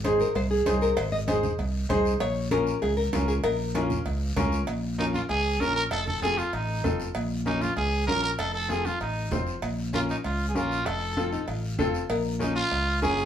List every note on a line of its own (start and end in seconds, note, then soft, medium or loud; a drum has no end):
0.00 0.23 G#1 loud
0.00 0.26 D#4 medium
0.04 0.26 G#4 medium
0.04 0.19 G#4 medium
0.04 0.26 C5 medium
0.04 cowbell medium
0.04 high conga medium
0.04 short guiro medium
0.20 0.35 A#4 medium
0.20 short guiro medium
0.35 0.60 C2 loud
0.35 0.41 C5 loud
0.35 cowbell medium
0.35 high conga soft
0.35 long guiro medium
0.51 0.83 G#4 medium
0.66 0.91 C2 loud
0.66 0.88 D#4 medium
0.66 0.88 G#4 medium
0.66 0.88 C5 medium
0.66 cowbell medium
0.66 high conga medium
0.66 low timbale medium
0.66 short guiro medium
0.81 0.96 A#4 medium
0.81 short guiro medium
0.97 1.47 G#1 medium
0.97 1.11 C5 loud
0.97 cowbell loud
0.97 high conga soft
0.97 long guiro medium
1.12 1.17 D#5 loud
1.27 1.49 D#4 medium
1.27 1.50 G#4 medium
1.27 1.50 C5 medium
1.27 1.86 D#5 medium
1.27 cowbell medium
1.27 high conga medium
1.27 short guiro medium
1.43 low conga medium
1.43 short guiro medium
1.59 1.83 C2 medium
1.59 cowbell medium
1.59 high conga soft
1.59 long guiro medium
1.89 2.14 C2 loud
1.89 2.11 D#4 medium
1.89 2.11 G#4 medium
1.89 2.11 C5 loud
1.89 cowbell medium
1.89 high conga medium
1.89 low conga medium
1.89 short guiro medium
2.05 short guiro medium
2.20 2.70 A#1 loud
2.20 2.49 C#5 loud
2.20 cowbell loud
2.20 high conga soft
2.20 long guiro medium
2.51 2.73 C#4 medium
2.51 2.73 F4 medium
2.51 2.80 A#4 loud
2.51 2.73 A#4 medium
2.51 cowbell medium
2.51 high conga medium
2.51 short guiro medium
2.67 short guiro medium
2.82 3.07 C#2 medium
2.82 2.96 G#4 loud
2.82 cowbell medium
2.82 high conga soft
2.82 long guiro medium
2.97 3.26 A#4 loud
3.13 3.38 C#2 loud
3.13 3.35 C#4 medium
3.13 3.35 F4 medium
3.13 3.35 A#4 medium
3.13 cowbell medium
3.13 high conga medium
3.13 low timbale medium
3.13 short guiro medium
3.28 3.33 G#4 medium
3.28 short guiro medium
3.43 3.94 A#1 medium
3.43 3.75 A#4 loud
3.43 cowbell loud
3.43 high conga soft
3.43 long guiro medium
3.75 3.96 C#4 medium
3.75 3.97 F4 medium
3.75 4.33 F4 medium
3.75 3.97 A#4 medium
3.75 cowbell medium
3.75 high conga medium
3.75 short guiro medium
3.90 low conga medium
3.90 short guiro medium
4.06 4.31 C#2 medium
4.06 cowbell medium
4.06 high conga soft
4.06 long guiro medium
4.36 4.61 C#2 loud
4.36 4.58 C#4 medium
4.36 4.58 F4 medium
4.36 4.58 A#4 loud
4.36 cowbell medium
4.36 high conga medium
4.36 low conga medium
4.36 low timbale medium
4.36 short guiro medium
4.52 short guiro medium
4.67 5.17 A#1 medium
4.67 cowbell loud
4.67 long guiro medium
4.98 5.20 C#4 medium
4.98 5.06 D#4 medium
4.98 5.20 F4 medium
4.98 5.20 A#4 medium
4.98 high conga medium
4.98 short guiro medium
5.14 5.21 F4 medium
5.14 high conga medium
5.14 short guiro medium
5.29 5.60 C#2 medium
5.29 5.62 G#4 loud
5.29 cowbell medium
5.29 long guiro medium
5.60 5.85 A#1 medium
5.60 5.82 C#4 medium
5.60 5.82 F4 medium
5.60 5.76 A#4 loud
5.60 5.82 A#4 medium
5.60 high conga medium
5.60 short guiro medium
5.76 5.83 A#4 loud
5.76 short guiro medium
5.91 6.41 F1 loud
5.91 6.06 A4 loud
5.91 cowbell loud
5.91 long guiro medium
6.07 6.22 A4 loud
6.07 low conga medium
6.22 6.44 C4 medium
6.22 6.44 F4 medium
6.22 6.40 G#4 loud
6.22 6.44 A4 medium
6.22 high conga medium
6.22 short guiro medium
6.38 6.56 F4 medium
6.38 short guiro medium
6.53 6.84 A1 medium
6.53 7.00 D#4 medium
6.53 cowbell medium
6.53 long guiro medium
6.84 7.09 F1 medium
6.84 7.06 C4 medium
6.84 7.06 F4 medium
6.84 7.06 A4 medium
6.84 high conga medium
6.84 low conga medium
6.84 low timbale medium
6.84 short guiro medium
7.00 short guiro medium
7.15 7.65 A#1 loud
7.15 cowbell loud
7.15 long guiro medium
7.46 7.68 C#4 medium
7.46 7.63 D#4 medium
7.46 7.68 F4 medium
7.46 7.68 A#4 medium
7.46 high conga medium
7.46 short guiro medium
7.61 7.76 F4 medium
7.61 high conga medium
7.61 short guiro medium
7.76 8.08 C#2 medium
7.76 8.05 G#4 medium
7.76 cowbell medium
7.76 long guiro medium
8.07 8.33 A#1 medium
8.07 8.29 C#4 medium
8.07 8.30 F4 medium
8.07 8.22 A#4 loud
8.07 8.30 A#4 medium
8.07 high conga medium
8.07 low timbale medium
8.07 short guiro medium
8.23 8.30 A#4 loud
8.23 short guiro medium
8.39 8.88 F1 loud
8.39 8.53 A4 loud
8.39 cowbell loud
8.39 long guiro medium
8.55 8.72 A4 medium
8.69 8.91 C4 medium
8.69 8.91 F4 medium
8.69 8.87 G#4 medium
8.69 8.91 A4 medium
8.69 high conga medium
8.69 short guiro medium
8.85 9.01 F4 medium
8.85 high conga medium
8.85 short guiro medium
9.00 9.31 A1 medium
9.00 9.44 D#4 medium
9.00 cowbell medium
9.00 long guiro medium
9.31 9.56 F1 medium
9.31 9.53 C4 medium
9.31 9.53 F4 medium
9.31 9.54 C5 medium
9.31 high conga medium
9.31 low conga medium
9.31 low timbale medium
9.31 short guiro medium
9.47 short guiro medium
9.62 10.12 A#1 medium
9.62 cowbell loud
9.62 long guiro medium
9.93 10.15 C#4 medium
9.93 10.15 F4 medium
9.93 10.01 F4 medium
9.93 10.15 A#4 medium
9.93 high conga medium
9.93 short guiro medium
10.09 10.17 D#4 medium
10.09 short guiro medium
10.24 10.56 C#2 medium
10.24 10.47 F4 medium
10.24 cowbell medium
10.24 long guiro medium
10.49 10.57 G#4 medium
10.55 10.80 A#1 loud
10.55 10.77 C#4 medium
10.55 10.77 F4 medium
10.55 10.88 F4 loud
10.55 10.77 A#4 medium
10.55 high conga medium
10.55 short guiro medium
10.71 short guiro medium
10.86 11.36 F1 loud
10.86 11.48 A4 loud
10.86 cowbell loud
10.86 long guiro medium
11.17 11.39 C4 medium
11.17 11.32 F4 medium
11.17 11.39 F4 medium
11.17 11.39 A4 medium
11.17 high conga medium
11.17 short guiro medium
11.33 11.47 D#4 medium
11.33 short guiro medium
11.48 11.79 A1 medium
11.48 11.77 F4 medium
11.48 cowbell medium
11.48 long guiro medium
11.79 12.04 F1 medium
11.79 12.00 C4 medium
11.79 12.07 F4 medium
11.79 12.01 F4 medium
11.79 12.01 A4 loud
11.79 high conga medium
11.79 low conga medium
11.79 short guiro medium
11.94 short guiro medium
12.10 12.59 A#1 loud
12.10 12.31 A#4 medium
12.10 cowbell loud
12.10 long guiro medium
12.39 12.62 C#4 medium
12.39 12.55 D#4 medium
12.39 12.62 F4 medium
12.39 12.62 A#4 medium
12.39 high conga medium
12.39 short guiro medium
12.55 12.99 F4 loud
12.55 short guiro medium
12.72 13.04 C#2 medium
12.72 cowbell medium
12.72 long guiro medium
13.02 13.25 F#1 loud
13.02 13.24 C#4 medium
13.02 13.24 F4 medium
13.02 13.25 G#4 medium
13.02 13.24 A#4 medium
13.02 high conga medium
13.02 low timbale medium
13.02 short guiro medium
13.18 short guiro medium